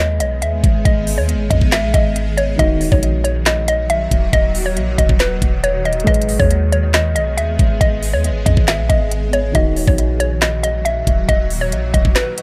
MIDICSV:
0, 0, Header, 1, 6, 480
1, 0, Start_track
1, 0, Key_signature, 5, "minor"
1, 0, Tempo, 434783
1, 942, Time_signature, 4, 2, 24, 8
1, 13714, End_track
2, 0, Start_track
2, 0, Title_t, "Synth pluck"
2, 0, Program_c, 0, 84
2, 0, Note_on_c, 0, 75, 83
2, 176, Note_off_c, 0, 75, 0
2, 224, Note_on_c, 0, 75, 72
2, 417, Note_off_c, 0, 75, 0
2, 464, Note_on_c, 0, 76, 76
2, 914, Note_off_c, 0, 76, 0
2, 940, Note_on_c, 0, 75, 99
2, 1280, Note_off_c, 0, 75, 0
2, 1300, Note_on_c, 0, 73, 72
2, 1639, Note_off_c, 0, 73, 0
2, 1661, Note_on_c, 0, 75, 84
2, 1855, Note_off_c, 0, 75, 0
2, 1903, Note_on_c, 0, 76, 95
2, 2096, Note_off_c, 0, 76, 0
2, 2140, Note_on_c, 0, 75, 82
2, 2592, Note_off_c, 0, 75, 0
2, 2621, Note_on_c, 0, 73, 83
2, 2815, Note_off_c, 0, 73, 0
2, 2862, Note_on_c, 0, 75, 107
2, 3200, Note_off_c, 0, 75, 0
2, 3221, Note_on_c, 0, 73, 75
2, 3560, Note_off_c, 0, 73, 0
2, 3579, Note_on_c, 0, 73, 94
2, 3774, Note_off_c, 0, 73, 0
2, 3823, Note_on_c, 0, 75, 89
2, 4017, Note_off_c, 0, 75, 0
2, 4065, Note_on_c, 0, 75, 85
2, 4258, Note_off_c, 0, 75, 0
2, 4303, Note_on_c, 0, 76, 84
2, 4754, Note_off_c, 0, 76, 0
2, 4781, Note_on_c, 0, 75, 109
2, 5120, Note_off_c, 0, 75, 0
2, 5141, Note_on_c, 0, 73, 85
2, 5480, Note_off_c, 0, 73, 0
2, 5501, Note_on_c, 0, 75, 80
2, 5695, Note_off_c, 0, 75, 0
2, 5739, Note_on_c, 0, 71, 83
2, 6192, Note_off_c, 0, 71, 0
2, 6222, Note_on_c, 0, 73, 86
2, 6416, Note_off_c, 0, 73, 0
2, 6463, Note_on_c, 0, 75, 89
2, 6656, Note_off_c, 0, 75, 0
2, 6702, Note_on_c, 0, 75, 106
2, 7041, Note_off_c, 0, 75, 0
2, 7060, Note_on_c, 0, 73, 87
2, 7399, Note_off_c, 0, 73, 0
2, 7423, Note_on_c, 0, 73, 87
2, 7617, Note_off_c, 0, 73, 0
2, 7662, Note_on_c, 0, 75, 88
2, 7856, Note_off_c, 0, 75, 0
2, 7899, Note_on_c, 0, 75, 73
2, 8094, Note_off_c, 0, 75, 0
2, 8141, Note_on_c, 0, 76, 77
2, 8593, Note_off_c, 0, 76, 0
2, 8619, Note_on_c, 0, 75, 97
2, 8959, Note_off_c, 0, 75, 0
2, 8981, Note_on_c, 0, 73, 71
2, 9320, Note_off_c, 0, 73, 0
2, 9338, Note_on_c, 0, 75, 82
2, 9534, Note_off_c, 0, 75, 0
2, 9581, Note_on_c, 0, 76, 91
2, 9775, Note_off_c, 0, 76, 0
2, 9819, Note_on_c, 0, 75, 77
2, 10271, Note_off_c, 0, 75, 0
2, 10303, Note_on_c, 0, 73, 84
2, 10496, Note_off_c, 0, 73, 0
2, 10544, Note_on_c, 0, 75, 109
2, 10882, Note_off_c, 0, 75, 0
2, 10903, Note_on_c, 0, 73, 77
2, 11241, Note_off_c, 0, 73, 0
2, 11260, Note_on_c, 0, 73, 97
2, 11455, Note_off_c, 0, 73, 0
2, 11500, Note_on_c, 0, 75, 91
2, 11695, Note_off_c, 0, 75, 0
2, 11740, Note_on_c, 0, 75, 84
2, 11935, Note_off_c, 0, 75, 0
2, 11978, Note_on_c, 0, 76, 81
2, 12431, Note_off_c, 0, 76, 0
2, 12459, Note_on_c, 0, 75, 108
2, 12799, Note_off_c, 0, 75, 0
2, 12820, Note_on_c, 0, 73, 86
2, 13159, Note_off_c, 0, 73, 0
2, 13178, Note_on_c, 0, 75, 80
2, 13374, Note_off_c, 0, 75, 0
2, 13418, Note_on_c, 0, 71, 85
2, 13714, Note_off_c, 0, 71, 0
2, 13714, End_track
3, 0, Start_track
3, 0, Title_t, "Grand piano"
3, 0, Program_c, 1, 0
3, 0, Control_c, 1, 64, 127
3, 0, Note_on_c, 1, 56, 67
3, 0, Note_on_c, 1, 68, 64
3, 0, Note_on_c, 1, 71, 60
3, 2801, Note_off_c, 1, 56, 0
3, 2813, Note_off_c, 1, 68, 0
3, 2825, Note_off_c, 1, 71, 0
3, 2827, Note_on_c, 1, 51, 74
3, 2874, Note_on_c, 1, 66, 60
3, 2879, Control_c, 1, 64, 0
3, 3079, Control_c, 1, 64, 127
3, 6640, Note_off_c, 1, 51, 0
3, 6664, Note_off_c, 1, 66, 0
3, 6666, Note_on_c, 1, 56, 69
3, 6691, Note_on_c, 1, 68, 66
3, 6714, Note_on_c, 1, 71, 59
3, 6718, Control_c, 1, 64, 0
3, 6931, Control_c, 1, 64, 127
3, 10480, Note_off_c, 1, 56, 0
3, 10492, Note_off_c, 1, 68, 0
3, 10504, Note_off_c, 1, 71, 0
3, 10506, Note_on_c, 1, 51, 77
3, 10554, Control_c, 1, 64, 0
3, 10554, Note_on_c, 1, 66, 61
3, 10749, Control_c, 1, 64, 127
3, 13714, Note_off_c, 1, 51, 0
3, 13714, Note_off_c, 1, 66, 0
3, 13714, End_track
4, 0, Start_track
4, 0, Title_t, "Ambient pad"
4, 0, Program_c, 2, 92
4, 0, Note_on_c, 2, 51, 84
4, 0, Note_on_c, 2, 56, 76
4, 0, Note_on_c, 2, 59, 76
4, 0, Note_on_c, 2, 68, 92
4, 2823, Note_off_c, 2, 51, 0
4, 2823, Note_off_c, 2, 56, 0
4, 2824, Note_off_c, 2, 59, 0
4, 2824, Note_off_c, 2, 68, 0
4, 2862, Note_on_c, 2, 46, 76
4, 2863, Note_on_c, 2, 51, 84
4, 2863, Note_on_c, 2, 54, 76
4, 2863, Note_on_c, 2, 66, 92
4, 6664, Note_off_c, 2, 46, 0
4, 6664, Note_off_c, 2, 54, 0
4, 6664, Note_off_c, 2, 66, 0
4, 6702, Note_on_c, 2, 68, 95
4, 6703, Note_on_c, 2, 56, 77
4, 6703, Note_on_c, 2, 59, 77
4, 10504, Note_off_c, 2, 56, 0
4, 10504, Note_off_c, 2, 59, 0
4, 10504, Note_off_c, 2, 68, 0
4, 10543, Note_on_c, 2, 46, 78
4, 10543, Note_on_c, 2, 66, 91
4, 10544, Note_on_c, 2, 54, 80
4, 13714, Note_off_c, 2, 46, 0
4, 13714, Note_off_c, 2, 51, 0
4, 13714, Note_off_c, 2, 54, 0
4, 13714, Note_off_c, 2, 66, 0
4, 13714, End_track
5, 0, Start_track
5, 0, Title_t, "808-style bass"
5, 0, Program_c, 3, 38
5, 0, Note_on_c, 3, 39, 110
5, 222, Note_on_c, 3, 35, 97
5, 238, Note_off_c, 3, 39, 0
5, 463, Note_on_c, 3, 39, 105
5, 479, Note_off_c, 3, 35, 0
5, 691, Note_off_c, 3, 39, 0
5, 703, Note_on_c, 3, 32, 105
5, 933, Note_off_c, 3, 32, 0
5, 943, Note_on_c, 3, 32, 112
5, 1302, Note_on_c, 3, 39, 104
5, 1319, Note_off_c, 3, 32, 0
5, 1481, Note_on_c, 3, 32, 102
5, 1498, Note_off_c, 3, 39, 0
5, 1653, Note_off_c, 3, 32, 0
5, 1663, Note_on_c, 3, 39, 106
5, 1778, Note_off_c, 3, 39, 0
5, 1782, Note_on_c, 3, 32, 104
5, 2020, Note_on_c, 3, 34, 97
5, 2037, Note_off_c, 3, 32, 0
5, 2135, Note_off_c, 3, 34, 0
5, 2142, Note_on_c, 3, 32, 106
5, 2833, Note_off_c, 3, 32, 0
5, 2862, Note_on_c, 3, 27, 117
5, 3208, Note_off_c, 3, 27, 0
5, 3223, Note_on_c, 3, 34, 102
5, 4498, Note_off_c, 3, 34, 0
5, 4541, Note_on_c, 3, 27, 105
5, 4772, Note_off_c, 3, 27, 0
5, 4782, Note_on_c, 3, 27, 107
5, 5262, Note_on_c, 3, 34, 103
5, 5278, Note_off_c, 3, 27, 0
5, 5490, Note_off_c, 3, 34, 0
5, 5503, Note_on_c, 3, 27, 106
5, 5618, Note_off_c, 3, 27, 0
5, 5623, Note_on_c, 3, 27, 103
5, 5968, Note_off_c, 3, 27, 0
5, 5982, Note_on_c, 3, 27, 102
5, 6674, Note_off_c, 3, 27, 0
5, 6702, Note_on_c, 3, 32, 116
5, 7048, Note_off_c, 3, 32, 0
5, 7062, Note_on_c, 3, 39, 109
5, 7901, Note_on_c, 3, 35, 98
5, 7918, Note_off_c, 3, 39, 0
5, 8142, Note_on_c, 3, 39, 100
5, 8158, Note_off_c, 3, 35, 0
5, 8370, Note_off_c, 3, 39, 0
5, 8382, Note_on_c, 3, 32, 107
5, 8612, Note_off_c, 3, 32, 0
5, 8622, Note_on_c, 3, 32, 109
5, 8980, Note_on_c, 3, 39, 102
5, 8997, Note_off_c, 3, 32, 0
5, 9161, Note_on_c, 3, 32, 98
5, 9178, Note_off_c, 3, 39, 0
5, 9333, Note_off_c, 3, 32, 0
5, 9342, Note_on_c, 3, 39, 101
5, 9457, Note_off_c, 3, 39, 0
5, 9462, Note_on_c, 3, 32, 107
5, 9699, Note_on_c, 3, 34, 105
5, 9716, Note_off_c, 3, 32, 0
5, 9815, Note_off_c, 3, 34, 0
5, 9822, Note_on_c, 3, 32, 105
5, 10513, Note_off_c, 3, 32, 0
5, 10541, Note_on_c, 3, 27, 119
5, 10887, Note_off_c, 3, 27, 0
5, 10902, Note_on_c, 3, 34, 103
5, 12178, Note_off_c, 3, 34, 0
5, 12221, Note_on_c, 3, 27, 109
5, 12452, Note_off_c, 3, 27, 0
5, 12462, Note_on_c, 3, 27, 114
5, 12940, Note_on_c, 3, 34, 102
5, 12957, Note_off_c, 3, 27, 0
5, 13169, Note_off_c, 3, 34, 0
5, 13183, Note_on_c, 3, 27, 105
5, 13298, Note_off_c, 3, 27, 0
5, 13303, Note_on_c, 3, 27, 100
5, 13418, Note_off_c, 3, 27, 0
5, 13714, End_track
6, 0, Start_track
6, 0, Title_t, "Drums"
6, 223, Note_on_c, 9, 42, 94
6, 334, Note_off_c, 9, 42, 0
6, 464, Note_on_c, 9, 42, 76
6, 575, Note_off_c, 9, 42, 0
6, 703, Note_on_c, 9, 36, 92
6, 704, Note_on_c, 9, 42, 69
6, 813, Note_off_c, 9, 36, 0
6, 815, Note_off_c, 9, 42, 0
6, 943, Note_on_c, 9, 36, 118
6, 944, Note_on_c, 9, 42, 89
6, 1053, Note_off_c, 9, 36, 0
6, 1054, Note_off_c, 9, 42, 0
6, 1181, Note_on_c, 9, 46, 84
6, 1292, Note_off_c, 9, 46, 0
6, 1423, Note_on_c, 9, 42, 85
6, 1533, Note_off_c, 9, 42, 0
6, 1663, Note_on_c, 9, 36, 100
6, 1663, Note_on_c, 9, 42, 83
6, 1773, Note_off_c, 9, 36, 0
6, 1774, Note_off_c, 9, 42, 0
6, 1783, Note_on_c, 9, 36, 103
6, 1893, Note_off_c, 9, 36, 0
6, 1901, Note_on_c, 9, 38, 125
6, 1901, Note_on_c, 9, 39, 104
6, 1902, Note_on_c, 9, 42, 87
6, 2012, Note_off_c, 9, 38, 0
6, 2012, Note_off_c, 9, 39, 0
6, 2013, Note_off_c, 9, 42, 0
6, 2143, Note_on_c, 9, 36, 96
6, 2143, Note_on_c, 9, 42, 95
6, 2253, Note_off_c, 9, 36, 0
6, 2253, Note_off_c, 9, 42, 0
6, 2384, Note_on_c, 9, 42, 78
6, 2494, Note_off_c, 9, 42, 0
6, 2624, Note_on_c, 9, 42, 66
6, 2734, Note_off_c, 9, 42, 0
6, 2862, Note_on_c, 9, 36, 119
6, 2863, Note_on_c, 9, 42, 90
6, 2973, Note_off_c, 9, 36, 0
6, 2973, Note_off_c, 9, 42, 0
6, 3100, Note_on_c, 9, 46, 81
6, 3210, Note_off_c, 9, 46, 0
6, 3222, Note_on_c, 9, 36, 105
6, 3333, Note_off_c, 9, 36, 0
6, 3343, Note_on_c, 9, 42, 82
6, 3453, Note_off_c, 9, 42, 0
6, 3584, Note_on_c, 9, 42, 81
6, 3695, Note_off_c, 9, 42, 0
6, 3822, Note_on_c, 9, 38, 127
6, 3822, Note_on_c, 9, 39, 106
6, 3823, Note_on_c, 9, 42, 82
6, 3932, Note_off_c, 9, 38, 0
6, 3932, Note_off_c, 9, 39, 0
6, 3933, Note_off_c, 9, 42, 0
6, 4063, Note_on_c, 9, 42, 95
6, 4173, Note_off_c, 9, 42, 0
6, 4303, Note_on_c, 9, 42, 77
6, 4413, Note_off_c, 9, 42, 0
6, 4542, Note_on_c, 9, 36, 91
6, 4543, Note_on_c, 9, 42, 67
6, 4652, Note_off_c, 9, 36, 0
6, 4653, Note_off_c, 9, 42, 0
6, 4782, Note_on_c, 9, 36, 124
6, 4782, Note_on_c, 9, 42, 89
6, 4892, Note_off_c, 9, 36, 0
6, 4893, Note_off_c, 9, 42, 0
6, 5020, Note_on_c, 9, 46, 83
6, 5131, Note_off_c, 9, 46, 0
6, 5263, Note_on_c, 9, 42, 86
6, 5373, Note_off_c, 9, 42, 0
6, 5503, Note_on_c, 9, 36, 99
6, 5504, Note_on_c, 9, 42, 86
6, 5613, Note_off_c, 9, 36, 0
6, 5615, Note_off_c, 9, 42, 0
6, 5623, Note_on_c, 9, 36, 107
6, 5733, Note_off_c, 9, 36, 0
6, 5741, Note_on_c, 9, 38, 124
6, 5741, Note_on_c, 9, 39, 100
6, 5742, Note_on_c, 9, 42, 86
6, 5852, Note_off_c, 9, 38, 0
6, 5852, Note_off_c, 9, 39, 0
6, 5853, Note_off_c, 9, 42, 0
6, 5982, Note_on_c, 9, 36, 98
6, 5983, Note_on_c, 9, 42, 94
6, 6093, Note_off_c, 9, 36, 0
6, 6093, Note_off_c, 9, 42, 0
6, 6223, Note_on_c, 9, 42, 78
6, 6333, Note_off_c, 9, 42, 0
6, 6462, Note_on_c, 9, 42, 42
6, 6543, Note_off_c, 9, 42, 0
6, 6543, Note_on_c, 9, 42, 49
6, 6623, Note_off_c, 9, 42, 0
6, 6623, Note_on_c, 9, 42, 54
6, 6702, Note_off_c, 9, 42, 0
6, 6702, Note_on_c, 9, 36, 122
6, 6702, Note_on_c, 9, 42, 60
6, 6782, Note_off_c, 9, 42, 0
6, 6782, Note_on_c, 9, 42, 65
6, 6812, Note_off_c, 9, 36, 0
6, 6862, Note_off_c, 9, 42, 0
6, 6862, Note_on_c, 9, 42, 68
6, 6941, Note_on_c, 9, 46, 87
6, 6973, Note_off_c, 9, 42, 0
6, 7051, Note_off_c, 9, 46, 0
6, 7062, Note_on_c, 9, 36, 105
6, 7173, Note_off_c, 9, 36, 0
6, 7182, Note_on_c, 9, 42, 85
6, 7293, Note_off_c, 9, 42, 0
6, 7424, Note_on_c, 9, 42, 85
6, 7535, Note_off_c, 9, 42, 0
6, 7661, Note_on_c, 9, 38, 126
6, 7661, Note_on_c, 9, 39, 99
6, 7662, Note_on_c, 9, 42, 83
6, 7771, Note_off_c, 9, 39, 0
6, 7772, Note_off_c, 9, 38, 0
6, 7773, Note_off_c, 9, 42, 0
6, 7903, Note_on_c, 9, 42, 93
6, 8013, Note_off_c, 9, 42, 0
6, 8144, Note_on_c, 9, 42, 77
6, 8254, Note_off_c, 9, 42, 0
6, 8382, Note_on_c, 9, 36, 90
6, 8383, Note_on_c, 9, 42, 67
6, 8492, Note_off_c, 9, 36, 0
6, 8494, Note_off_c, 9, 42, 0
6, 8622, Note_on_c, 9, 36, 125
6, 8622, Note_on_c, 9, 42, 89
6, 8732, Note_off_c, 9, 36, 0
6, 8733, Note_off_c, 9, 42, 0
6, 8860, Note_on_c, 9, 46, 84
6, 8970, Note_off_c, 9, 46, 0
6, 9101, Note_on_c, 9, 42, 85
6, 9212, Note_off_c, 9, 42, 0
6, 9342, Note_on_c, 9, 36, 102
6, 9343, Note_on_c, 9, 42, 84
6, 9453, Note_off_c, 9, 36, 0
6, 9453, Note_off_c, 9, 42, 0
6, 9462, Note_on_c, 9, 36, 103
6, 9573, Note_off_c, 9, 36, 0
6, 9581, Note_on_c, 9, 38, 126
6, 9581, Note_on_c, 9, 39, 100
6, 9582, Note_on_c, 9, 42, 87
6, 9691, Note_off_c, 9, 39, 0
6, 9692, Note_off_c, 9, 38, 0
6, 9693, Note_off_c, 9, 42, 0
6, 9822, Note_on_c, 9, 36, 99
6, 9822, Note_on_c, 9, 42, 92
6, 9932, Note_off_c, 9, 36, 0
6, 9933, Note_off_c, 9, 42, 0
6, 10063, Note_on_c, 9, 42, 78
6, 10173, Note_off_c, 9, 42, 0
6, 10302, Note_on_c, 9, 42, 67
6, 10412, Note_off_c, 9, 42, 0
6, 10541, Note_on_c, 9, 36, 126
6, 10541, Note_on_c, 9, 42, 88
6, 10651, Note_off_c, 9, 42, 0
6, 10652, Note_off_c, 9, 36, 0
6, 10780, Note_on_c, 9, 46, 82
6, 10891, Note_off_c, 9, 46, 0
6, 10902, Note_on_c, 9, 36, 106
6, 11012, Note_off_c, 9, 36, 0
6, 11021, Note_on_c, 9, 42, 85
6, 11132, Note_off_c, 9, 42, 0
6, 11263, Note_on_c, 9, 42, 84
6, 11373, Note_off_c, 9, 42, 0
6, 11501, Note_on_c, 9, 38, 127
6, 11501, Note_on_c, 9, 39, 100
6, 11502, Note_on_c, 9, 42, 84
6, 11612, Note_off_c, 9, 38, 0
6, 11612, Note_off_c, 9, 39, 0
6, 11613, Note_off_c, 9, 42, 0
6, 11743, Note_on_c, 9, 42, 93
6, 11853, Note_off_c, 9, 42, 0
6, 11984, Note_on_c, 9, 42, 79
6, 12095, Note_off_c, 9, 42, 0
6, 12222, Note_on_c, 9, 36, 91
6, 12223, Note_on_c, 9, 42, 69
6, 12332, Note_off_c, 9, 36, 0
6, 12333, Note_off_c, 9, 42, 0
6, 12462, Note_on_c, 9, 36, 123
6, 12462, Note_on_c, 9, 42, 88
6, 12572, Note_off_c, 9, 36, 0
6, 12572, Note_off_c, 9, 42, 0
6, 12701, Note_on_c, 9, 46, 85
6, 12811, Note_off_c, 9, 46, 0
6, 12942, Note_on_c, 9, 42, 85
6, 13052, Note_off_c, 9, 42, 0
6, 13183, Note_on_c, 9, 36, 100
6, 13184, Note_on_c, 9, 42, 85
6, 13293, Note_off_c, 9, 36, 0
6, 13294, Note_off_c, 9, 42, 0
6, 13303, Note_on_c, 9, 36, 106
6, 13413, Note_off_c, 9, 36, 0
6, 13421, Note_on_c, 9, 38, 126
6, 13421, Note_on_c, 9, 39, 104
6, 13422, Note_on_c, 9, 42, 85
6, 13532, Note_off_c, 9, 38, 0
6, 13532, Note_off_c, 9, 39, 0
6, 13533, Note_off_c, 9, 42, 0
6, 13664, Note_on_c, 9, 42, 94
6, 13714, Note_off_c, 9, 42, 0
6, 13714, End_track
0, 0, End_of_file